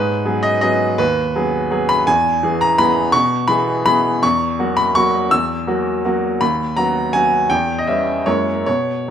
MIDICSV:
0, 0, Header, 1, 2, 480
1, 0, Start_track
1, 0, Tempo, 361228
1, 1322, Time_signature, 3, 2, 24, 8
1, 8985, Tempo, 369686
1, 10425, Tempo, 401338
1, 11899, End_track
2, 0, Start_track
2, 0, Title_t, "Grand piano"
2, 0, Program_c, 0, 0
2, 0, Note_on_c, 0, 44, 59
2, 0, Note_on_c, 0, 71, 89
2, 129, Control_c, 0, 64, 127
2, 322, Note_off_c, 0, 44, 0
2, 335, Note_on_c, 0, 54, 46
2, 336, Note_on_c, 0, 59, 51
2, 342, Note_on_c, 0, 68, 51
2, 567, Note_on_c, 0, 75, 89
2, 579, Note_off_c, 0, 71, 0
2, 786, Note_off_c, 0, 54, 0
2, 786, Note_off_c, 0, 59, 0
2, 790, Note_off_c, 0, 68, 0
2, 795, Note_off_c, 0, 75, 0
2, 815, Note_on_c, 0, 75, 91
2, 828, Note_on_c, 0, 54, 52
2, 835, Note_on_c, 0, 59, 54
2, 835, Note_on_c, 0, 68, 53
2, 1267, Note_off_c, 0, 54, 0
2, 1271, Note_off_c, 0, 59, 0
2, 1271, Note_off_c, 0, 68, 0
2, 1306, Note_on_c, 0, 71, 93
2, 1309, Note_off_c, 0, 75, 0
2, 1316, Note_on_c, 0, 39, 64
2, 1345, Control_c, 0, 64, 0
2, 1551, Control_c, 0, 64, 127
2, 1779, Note_off_c, 0, 39, 0
2, 1800, Note_on_c, 0, 54, 49
2, 1804, Note_on_c, 0, 59, 47
2, 1810, Note_on_c, 0, 68, 55
2, 2230, Note_off_c, 0, 54, 0
2, 2232, Note_off_c, 0, 59, 0
2, 2235, Note_off_c, 0, 68, 0
2, 2270, Note_on_c, 0, 54, 54
2, 2277, Note_on_c, 0, 59, 51
2, 2280, Note_on_c, 0, 68, 58
2, 2509, Note_off_c, 0, 71, 0
2, 2509, Note_on_c, 0, 83, 98
2, 2702, Note_off_c, 0, 54, 0
2, 2706, Note_off_c, 0, 59, 0
2, 2707, Note_off_c, 0, 68, 0
2, 2749, Note_off_c, 0, 83, 0
2, 2750, Note_on_c, 0, 80, 98
2, 2759, Note_on_c, 0, 40, 66
2, 2780, Control_c, 0, 64, 0
2, 3010, Control_c, 0, 64, 127
2, 3221, Note_off_c, 0, 40, 0
2, 3232, Note_on_c, 0, 52, 55
2, 3232, Note_on_c, 0, 59, 51
2, 3246, Note_on_c, 0, 68, 54
2, 3468, Note_on_c, 0, 82, 99
2, 3473, Note_off_c, 0, 80, 0
2, 3666, Note_off_c, 0, 52, 0
2, 3666, Note_off_c, 0, 59, 0
2, 3673, Note_off_c, 0, 68, 0
2, 3700, Note_on_c, 0, 83, 106
2, 3709, Note_on_c, 0, 52, 55
2, 3711, Note_off_c, 0, 82, 0
2, 3718, Note_on_c, 0, 59, 53
2, 3723, Note_on_c, 0, 68, 57
2, 4129, Note_off_c, 0, 52, 0
2, 4134, Note_off_c, 0, 59, 0
2, 4136, Note_off_c, 0, 68, 0
2, 4150, Note_on_c, 0, 85, 107
2, 4163, Note_on_c, 0, 47, 71
2, 4170, Note_off_c, 0, 83, 0
2, 4202, Control_c, 0, 64, 0
2, 4407, Control_c, 0, 64, 127
2, 4618, Note_on_c, 0, 83, 100
2, 4622, Note_off_c, 0, 47, 0
2, 4630, Note_off_c, 0, 85, 0
2, 4630, Note_on_c, 0, 52, 51
2, 4635, Note_on_c, 0, 59, 52
2, 4643, Note_on_c, 0, 68, 55
2, 5088, Note_off_c, 0, 52, 0
2, 5091, Note_off_c, 0, 59, 0
2, 5096, Note_off_c, 0, 68, 0
2, 5104, Note_off_c, 0, 83, 0
2, 5124, Note_on_c, 0, 83, 111
2, 5133, Note_on_c, 0, 52, 52
2, 5141, Note_on_c, 0, 59, 54
2, 5145, Note_on_c, 0, 68, 56
2, 5578, Note_off_c, 0, 52, 0
2, 5582, Note_off_c, 0, 59, 0
2, 5584, Note_off_c, 0, 68, 0
2, 5617, Note_on_c, 0, 85, 96
2, 5622, Note_off_c, 0, 83, 0
2, 5625, Note_on_c, 0, 40, 63
2, 5661, Control_c, 0, 64, 0
2, 5900, Control_c, 0, 64, 127
2, 6084, Note_off_c, 0, 40, 0
2, 6100, Note_on_c, 0, 54, 49
2, 6106, Note_on_c, 0, 58, 50
2, 6110, Note_on_c, 0, 66, 58
2, 6333, Note_on_c, 0, 83, 100
2, 6337, Note_off_c, 0, 85, 0
2, 6541, Note_off_c, 0, 54, 0
2, 6545, Note_off_c, 0, 58, 0
2, 6547, Note_off_c, 0, 66, 0
2, 6579, Note_on_c, 0, 85, 102
2, 6586, Note_off_c, 0, 83, 0
2, 6593, Note_on_c, 0, 54, 53
2, 6594, Note_on_c, 0, 58, 51
2, 6599, Note_on_c, 0, 66, 52
2, 7019, Note_off_c, 0, 54, 0
2, 7019, Note_off_c, 0, 58, 0
2, 7022, Note_off_c, 0, 66, 0
2, 7058, Note_on_c, 0, 88, 98
2, 7059, Note_off_c, 0, 85, 0
2, 7065, Note_on_c, 0, 40, 60
2, 7088, Control_c, 0, 64, 0
2, 7313, Control_c, 0, 64, 127
2, 7523, Note_off_c, 0, 40, 0
2, 7537, Note_on_c, 0, 54, 50
2, 7543, Note_on_c, 0, 58, 52
2, 7550, Note_on_c, 0, 66, 57
2, 7978, Note_off_c, 0, 54, 0
2, 7981, Note_off_c, 0, 58, 0
2, 7985, Note_off_c, 0, 66, 0
2, 8023, Note_off_c, 0, 88, 0
2, 8037, Note_on_c, 0, 54, 51
2, 8043, Note_on_c, 0, 58, 52
2, 8053, Note_on_c, 0, 66, 55
2, 8470, Note_off_c, 0, 54, 0
2, 8474, Note_off_c, 0, 58, 0
2, 8479, Note_off_c, 0, 66, 0
2, 8513, Note_on_c, 0, 83, 96
2, 8521, Note_on_c, 0, 39, 60
2, 8533, Control_c, 0, 64, 0
2, 8770, Control_c, 0, 64, 127
2, 8976, Note_off_c, 0, 39, 0
2, 8987, Note_off_c, 0, 83, 0
2, 8989, Note_on_c, 0, 82, 90
2, 8997, Note_on_c, 0, 54, 45
2, 9002, Note_on_c, 0, 59, 44
2, 9011, Note_on_c, 0, 66, 51
2, 9428, Note_off_c, 0, 54, 0
2, 9430, Note_off_c, 0, 59, 0
2, 9435, Note_off_c, 0, 66, 0
2, 9464, Note_on_c, 0, 80, 97
2, 9472, Note_off_c, 0, 82, 0
2, 9473, Note_on_c, 0, 54, 44
2, 9483, Note_on_c, 0, 59, 45
2, 9492, Note_on_c, 0, 66, 50
2, 9901, Note_off_c, 0, 54, 0
2, 9906, Note_off_c, 0, 59, 0
2, 9911, Note_off_c, 0, 66, 0
2, 9938, Note_on_c, 0, 79, 88
2, 9944, Note_off_c, 0, 80, 0
2, 9954, Note_on_c, 0, 40, 59
2, 9974, Control_c, 0, 64, 0
2, 10175, Control_c, 0, 64, 127
2, 10300, Note_off_c, 0, 79, 0
2, 10314, Note_on_c, 0, 75, 71
2, 10416, Note_off_c, 0, 40, 0
2, 10427, Note_on_c, 0, 76, 69
2, 10431, Note_off_c, 0, 75, 0
2, 10439, Note_on_c, 0, 55, 42
2, 10441, Note_on_c, 0, 59, 41
2, 10450, Note_on_c, 0, 61, 45
2, 10854, Note_off_c, 0, 55, 0
2, 10855, Note_off_c, 0, 59, 0
2, 10860, Note_off_c, 0, 61, 0
2, 10890, Note_on_c, 0, 73, 81
2, 10894, Note_off_c, 0, 76, 0
2, 10896, Note_on_c, 0, 56, 41
2, 10898, Note_on_c, 0, 42, 58
2, 10905, Note_on_c, 0, 58, 42
2, 10911, Note_on_c, 0, 64, 41
2, 10919, Control_c, 0, 64, 0
2, 11124, Control_c, 0, 64, 127
2, 11330, Note_off_c, 0, 56, 0
2, 11334, Note_off_c, 0, 58, 0
2, 11337, Note_off_c, 0, 64, 0
2, 11355, Note_off_c, 0, 73, 0
2, 11364, Note_off_c, 0, 42, 0
2, 11373, Note_on_c, 0, 73, 83
2, 11386, Note_on_c, 0, 47, 51
2, 11400, Control_c, 0, 64, 0
2, 11623, Control_c, 0, 64, 127
2, 11857, Note_off_c, 0, 47, 0
2, 11899, Note_off_c, 0, 73, 0
2, 11899, End_track
0, 0, End_of_file